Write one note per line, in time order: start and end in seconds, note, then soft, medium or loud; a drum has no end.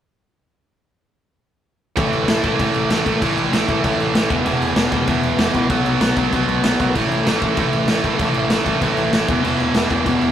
1.97 2.07 A1 medium
1.97 2.27 A2 medium
1.97 2.28 E3 loud
1.97 2.29 A3 loud
1.97 kick loud
1.97 crash medium
2.13 2.23 A1 medium
2.13 crash medium
2.28 2.38 A1 medium
2.28 2.43 A2 medium
2.28 2.44 E3 loud
2.28 2.42 A3 loud
2.28 snare loud
2.28 crash medium
2.43 2.54 A1 medium
2.43 2.57 A2 medium
2.43 2.59 E3 medium
2.43 2.59 A3 medium
2.43 kick medium
2.43 crash medium
2.59 2.69 A1 medium
2.59 2.90 A2 medium
2.59 2.91 E3 loud
2.59 2.91 A3 loud
2.59 kick medium
2.59 crash medium
2.74 2.86 A1 medium
2.74 crash medium
2.90 3.01 A1 medium
2.90 3.06 A2 medium
2.90 3.06 E3 medium
2.90 3.04 A3 loud
2.90 snare loud
2.90 crash medium
3.06 3.16 A1 medium
3.06 3.20 A2 medium
3.06 3.21 E3 medium
3.06 3.21 A3 medium
3.06 kick medium
3.06 crash medium
3.21 3.32 A1 medium
3.21 3.51 A2 medium
3.21 3.53 E3 loud
3.21 3.52 A3 loud
3.21 kick loud
3.21 crash medium
3.37 3.47 A1 medium
3.37 crash medium
3.52 3.62 A1 loud
3.52 3.68 A2 medium
3.52 3.68 E3 medium
3.52 3.66 A3 loud
3.52 snare loud
3.52 crash medium
3.68 3.78 A1 medium
3.68 3.82 A2 medium
3.68 3.82 E3 medium
3.68 3.83 A3 loud
3.68 kick medium
3.68 crash medium
3.83 3.94 A1 loud
3.83 4.13 A2 loud
3.83 4.13 E3 medium
3.83 4.14 A3 loud
3.83 kick loud
3.83 crash medium
3.98 4.08 A1 medium
3.98 crash medium
4.14 4.24 A1 medium
4.14 4.29 A2 medium
4.14 4.29 E3 medium
4.14 4.29 A3 loud
4.14 snare loud
4.14 crash medium
4.29 4.40 E1 medium
4.29 4.45 E2 medium
4.29 4.45 B2 loud
4.29 4.44 E3 loud
4.29 kick loud
4.29 crash medium
4.45 4.56 E1 medium
4.45 4.76 E2 medium
4.45 4.76 B2 medium
4.45 4.75 E3 medium
4.45 crash medium
4.61 4.71 E1 loud
4.61 crash medium
4.76 4.86 E1 loud
4.76 4.90 E2 medium
4.76 4.91 B2 medium
4.76 4.91 E3 loud
4.76 snare loud
4.76 crash medium
4.91 5.02 E1 medium
4.91 5.07 E2 medium
4.91 5.06 B2 medium
4.91 5.06 E3 loud
4.91 kick medium
4.91 crash medium
5.07 5.18 E1 medium
5.07 5.38 E2 medium
5.07 5.38 B2 loud
5.07 5.37 E3 loud
5.07 kick loud
5.07 crash medium
5.22 5.33 E1 medium
5.22 crash medium
5.38 5.48 E1 medium
5.38 5.53 E2 medium
5.38 5.54 B2 medium
5.38 5.54 E3 medium
5.38 snare loud
5.38 crash medium
5.54 5.65 A#1 loud
5.54 5.69 E2 medium
5.54 5.69 B2 medium
5.54 5.70 E3 medium
5.54 kick medium
5.54 crash medium
5.70 5.80 B1 loud
5.70 6.00 B2 medium
5.70 6.00 F#3 loud
5.70 6.01 B3 medium
5.70 kick loud
5.70 crash medium
5.84 5.95 B1 medium
5.84 crash medium
6.01 6.11 B1 loud
6.01 6.17 B2 medium
6.01 6.17 F#3 medium
6.01 6.16 B3 loud
6.01 snare loud
6.01 crash medium
6.16 6.27 B1 medium
6.16 6.32 B2 medium
6.16 6.32 F#3 medium
6.16 6.33 B3 medium
6.16 kick medium
6.16 crash medium
6.33 6.43 B1 medium
6.33 6.63 B2 loud
6.33 6.63 F#3 loud
6.33 6.64 B3 loud
6.33 kick loud
6.33 crash medium
6.48 6.58 B1 medium
6.48 crash medium
6.64 6.74 B1 medium
6.64 6.79 B2 medium
6.64 6.79 F#3 medium
6.64 6.78 B3 medium
6.64 snare loud
6.64 crash medium
6.79 6.96 B1 medium
6.79 6.94 B2 medium
6.79 6.94 F#3 medium
6.79 6.94 B3 medium
6.79 kick medium
6.79 crash medium
6.94 7.06 A1 medium
6.94 7.25 A2 medium
6.94 7.26 E3 loud
6.94 7.26 A3 loud
6.94 kick loud
6.94 crash medium
7.10 7.20 A1 medium
7.10 crash medium
7.25 7.36 A1 medium
7.25 7.41 A2 medium
7.25 7.41 E3 medium
7.25 7.39 A3 loud
7.25 snare loud
7.25 crash medium
7.41 7.52 A1 medium
7.41 7.55 A2 medium
7.41 7.56 E3 medium
7.41 7.56 A3 medium
7.41 kick medium
7.41 crash medium
7.56 7.68 A1 medium
7.56 7.86 A2 medium
7.56 7.88 E3 medium
7.56 7.88 A3 loud
7.56 kick loud
7.56 crash medium
7.73 7.83 A1 medium
7.73 crash medium
7.87 7.98 A1 medium
7.87 8.04 A2 medium
7.87 8.04 E3 medium
7.87 8.03 A3 medium
7.87 snare loud
7.87 crash medium
8.04 8.14 A1 medium
8.04 8.18 A2 medium
8.04 8.19 E3 medium
8.04 8.18 A3 medium
8.04 kick medium
8.04 crash medium
8.19 8.29 A1 loud
8.19 8.49 A2 medium
8.19 8.50 E3 medium
8.19 8.50 A3 medium
8.19 kick loud
8.19 crash medium
8.34 8.45 A1 loud
8.34 crash medium
8.50 8.61 A1 loud
8.50 8.66 A2 medium
8.50 8.66 E3 medium
8.50 8.64 A3 medium
8.50 snare loud
8.50 crash medium
8.66 8.76 A1 medium
8.66 8.80 A2 medium
8.66 8.81 E3 medium
8.66 8.81 A3 medium
8.66 kick medium
8.66 crash medium
8.81 8.92 A1 medium
8.81 9.10 A2 loud
8.81 9.11 E3 loud
8.81 9.12 A3 loud
8.81 kick medium
8.81 crash medium
8.97 9.08 A1 medium
8.97 crash medium
9.11 9.23 A1 medium
9.11 9.27 A2 medium
9.11 9.27 E3 medium
9.11 9.27 A3 medium
9.11 snare loud
9.11 crash medium
9.27 9.39 E1 medium
9.27 9.43 E2 medium
9.27 9.42 B2 loud
9.27 9.41 E3 loud
9.27 kick loud
9.27 crash medium
9.42 9.54 E1 medium
9.42 9.74 E2 medium
9.42 9.73 B2 medium
9.42 9.73 E3 loud
9.42 crash medium
9.60 9.70 E1 medium
9.60 crash medium
9.74 9.85 E1 medium
9.74 9.88 E2 medium
9.74 9.89 B2 medium
9.74 9.89 E3 medium
9.74 snare loud
9.74 crash medium
9.89 10.01 E1 medium
9.89 10.05 E2 medium
9.89 10.05 B2 medium
9.89 10.04 E3 medium
9.89 kick medium
9.89 crash medium
10.05 10.16 E1 medium
10.05 10.32 E2 medium
10.05 10.32 B2 loud
10.05 10.32 E3 loud
10.05 kick medium
10.05 crash medium
10.21 10.32 E1 loud
10.21 crash medium